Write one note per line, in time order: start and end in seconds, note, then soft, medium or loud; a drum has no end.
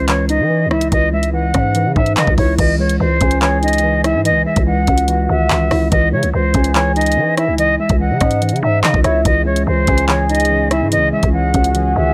0.00 0.41 C#2 loud
0.00 0.50 G#3 medium
0.00 0.92 C#4 medium
0.08 0.49 E3 medium
0.08 0.25 C#5 medium
0.08 clap loud
0.08 closed hi-hat medium
0.29 1.34 D#4 medium
0.29 0.69 D#5 medium
0.29 closed hi-hat medium
0.40 0.67 E3 loud
0.50 0.90 E3 medium
0.66 0.91 C#2 loud
0.71 1.75 E4 loud
0.71 0.88 E5 medium
0.71 cross-stick loud
0.81 closed hi-hat medium
0.92 1.52 C#2 loud
0.92 1.32 E3 medium
0.92 1.09 D#5 loud
0.92 kick loud
0.92 closed hi-hat medium
1.13 2.17 G#3 medium
1.13 1.30 E5 medium
1.23 closed hi-hat medium
1.33 1.74 E3 medium
1.33 1.92 F#5 medium
1.54 1.87 G#2 loud
1.54 2.59 C#4 medium
1.54 kick loud
1.54 cross-stick loud
1.54 closed hi-hat medium
1.75 2.16 E3 loud
1.75 closed hi-hat medium
1.86 1.96 C#3 loud
1.96 2.16 G#2 loud
1.96 2.59 D#4 medium
1.96 2.13 E5 medium
1.96 kick loud
2.06 closed hi-hat medium
2.17 2.27 C#3 loud
2.17 2.58 E3 medium
2.17 2.34 D#5 medium
2.17 clap loud
2.17 closed hi-hat medium
2.27 2.37 C#2 loud
2.27 kick loud
2.38 2.58 C#2 loud
2.38 2.59 E4 medium
2.38 2.55 C#5 medium
2.38 kick loud
2.38 open hi-hat soft
2.59 2.99 C#2 loud
2.59 2.99 E3 loud
2.59 2.75 D#5 medium
2.59 kick loud
2.59 closed hi-hat loud
2.59 crash loud
2.79 3.83 G#3 medium
2.79 2.96 C#5 medium
2.89 closed hi-hat medium
3.00 3.20 C#2 loud
3.00 3.40 E3 medium
3.00 3.39 C5 medium
3.21 4.16 C#2 loud
3.21 4.25 C#4 medium
3.21 4.21 G#5 medium
3.21 kick medium
3.21 closed hi-hat medium
3.31 closed hi-hat medium
3.42 3.82 E3 medium
3.42 3.59 C#5 medium
3.42 clap loud
3.63 4.67 D#4 medium
3.63 4.02 D#5 medium
3.63 closed hi-hat soft
3.68 closed hi-hat medium
3.73 closed hi-hat medium
3.78 closed hi-hat medium
3.84 4.24 E3 medium
4.04 5.09 E4 medium
4.04 4.21 E5 medium
4.04 cross-stick loud
4.04 closed hi-hat medium
4.15 4.32 G#2 loud
4.25 4.65 E3 medium
4.25 4.42 D#5 loud
4.25 closed hi-hat medium
4.30 4.45 C#2 loud
4.46 5.50 G#3 medium
4.46 4.63 E5 medium
4.56 4.87 C#2 loud
4.56 kick loud
4.56 closed hi-hat medium
4.67 5.07 E3 medium
4.67 5.06 F#5 medium
4.87 5.28 C#2 loud
4.87 5.92 C#4 medium
4.87 5.88 F#5 medium
4.87 kick medium
4.87 closed hi-hat medium
4.98 closed hi-hat medium
5.08 5.49 E3 medium
5.08 closed hi-hat medium
5.29 5.49 C#2 loud
5.29 5.92 D#3 medium
5.29 5.88 E5 medium
5.50 5.70 C#2 loud
5.50 5.90 E3 medium
5.50 clap loud
5.71 5.91 C#2 loud
5.71 5.92 E4 medium
5.71 cross-stick loud
5.71 open hi-hat medium
5.92 6.14 C#2 loud
5.92 6.33 E3 loud
5.92 6.09 D#5 loud
5.92 kick loud
5.92 closed hi-hat medium
6.12 6.25 C#3 loud
6.12 7.17 G#3 medium
6.12 6.30 C#5 medium
6.23 6.33 C#2 loud
6.23 closed hi-hat medium
6.34 6.54 C#2 loud
6.34 6.74 E3 medium
6.34 6.73 C5 medium
6.54 7.18 C#2 loud
6.54 7.59 C#4 medium
6.54 7.55 G#5 medium
6.54 kick medium
6.54 closed hi-hat medium
6.64 closed hi-hat medium
6.75 7.15 E3 medium
6.75 6.92 C#5 medium
6.75 clap loud
6.96 8.00 D#4 medium
6.96 7.35 D#5 medium
6.96 closed hi-hat soft
7.01 closed hi-hat medium
7.06 closed hi-hat medium
7.12 closed hi-hat medium
7.17 7.57 E3 medium
7.17 7.50 E3 loud
7.37 8.42 E4 loud
7.37 7.55 E5 medium
7.37 cross-stick loud
7.37 closed hi-hat medium
7.48 7.78 C#2 loud
7.58 7.99 E3 medium
7.58 7.75 D#5 loud
7.58 closed hi-hat medium
7.79 8.84 G#3 medium
7.79 7.96 E5 medium
7.89 8.12 C#2 loud
7.89 kick loud
7.89 closed hi-hat medium
8.00 8.41 E3 medium
8.00 8.59 F#5 medium
8.11 8.21 C#3 medium
8.21 8.54 G#2 loud
8.21 9.25 C#4 medium
8.21 8.41 D#5 medium
8.21 kick loud
8.21 cross-stick loud
8.21 closed hi-hat medium
8.31 closed hi-hat medium
8.42 8.83 E3 medium
8.42 closed hi-hat medium
8.49 8.62 C#3 loud
8.49 closed hi-hat medium
8.56 closed hi-hat soft
8.63 8.83 G#2 loud
8.63 9.25 D#4 medium
8.63 8.79 E5 medium
8.83 8.94 C#3 loud
8.83 9.24 E3 medium
8.83 9.00 D#5 medium
8.83 clap loud
8.94 9.04 C#2 loud
8.94 kick loud
9.04 9.24 C#2 loud
9.04 9.25 E4 medium
9.04 9.21 C#5 medium
9.04 9.24 E5 medium
9.04 cross-stick loud
9.04 closed hi-hat medium
9.25 9.65 C#2 loud
9.25 12.14 C#3 medium
9.25 9.66 E3 loud
9.25 12.14 C#4 medium
9.25 12.14 G#4 medium
9.25 9.42 D#5 loud
9.25 kick loud
9.25 closed hi-hat medium
9.46 10.50 G#3 medium
9.46 9.63 C#5 medium
9.56 closed hi-hat medium
9.67 9.87 C#2 loud
9.67 10.07 E3 medium
9.67 10.06 C5 medium
9.87 10.83 C#2 loud
9.87 10.92 C#4 medium
9.87 10.88 G#5 medium
9.87 kick loud
9.87 closed hi-hat medium
9.98 closed hi-hat medium
10.08 10.49 E3 medium
10.08 10.25 C#5 medium
10.08 clap loud
10.29 11.34 D#4 medium
10.29 10.69 D#5 medium
10.29 closed hi-hat soft
10.35 closed hi-hat medium
10.40 closed hi-hat medium
10.45 closed hi-hat medium
10.50 10.90 E3 medium
10.71 11.75 E4 medium
10.71 10.88 E5 medium
10.71 cross-stick loud
10.71 closed hi-hat medium
10.81 10.99 G#2 loud
10.92 11.32 E3 medium
10.92 11.09 D#5 loud
10.92 closed hi-hat medium
10.97 11.12 C#2 loud
11.13 12.14 G#3 medium
11.13 11.29 E5 medium
11.23 11.53 C#2 loud
11.23 kick loud
11.23 closed hi-hat medium
11.33 11.74 E3 medium
11.33 11.73 F#5 medium
11.54 11.94 C#2 loud
11.54 12.14 C#4 medium
11.54 12.14 F#5 medium
11.54 kick medium
11.54 closed hi-hat medium
11.64 closed hi-hat medium
11.75 12.14 E3 medium
11.75 closed hi-hat medium
11.95 12.14 C#2 loud
11.95 12.14 D#3 medium
11.95 12.14 E5 medium